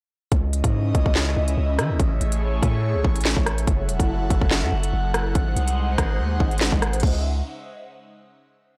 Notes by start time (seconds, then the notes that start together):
0.32 C#2 C#3 C#4 E4 D#5, kick, closed hi-hat
0.53 closed hi-hat
0.64 G#2, kick, closed hi-hat
0.95 C#2, kick, closed hi-hat
1.06 C#2, kick
1.15 snare, clap
1.37 C#2
1.48 closed hi-hat
1.58 C#2
1.79 E3, cross-stick, closed hi-hat
1.90 C#2
1.99 A1 A3 G#4 C#5, kick, closed hi-hat
2.21 A1, closed hi-hat
2.32 closed hi-hat
2.63 A2, kick, closed hi-hat
2.95 C2
3.05 A1, kick
3.16 closed hi-hat
3.21 closed hi-hat
3.25 snare, clap
3.31 closed hi-hat
3.37 A1, kick
3.46 cross-stick, closed hi-hat
3.58 closed hi-hat
3.67 F#1 F#3 E4 A4 F#5, kick, closed hi-hat
3.88 E1, closed hi-hat
4.00 F#1, kick, closed hi-hat
4.30 F#1, kick, closed hi-hat
4.41 F#1, kick
4.51 snare, clap
4.62 F#2
4.72 F#1
4.83 closed hi-hat
4.93 F#1
5.14 cross-stick, closed hi-hat
5.35 G#1 G#3 D#4 C5, kick, closed hi-hat
5.56 C2, closed hi-hat
5.68 closed hi-hat
5.98 G#1, kick, cross-stick, closed hi-hat
6.19 D#2
6.40 G#1, kick
6.51 closed hi-hat
6.58 snare, clap, closed hi-hat
6.65 closed hi-hat
6.72 G#1, kick
6.82 cross-stick, closed hi-hat
6.93 A1, closed hi-hat
7.00 C#2 C#3 C#4 D#5 E5, kick, closed hi-hat, crash
7.07 closed hi-hat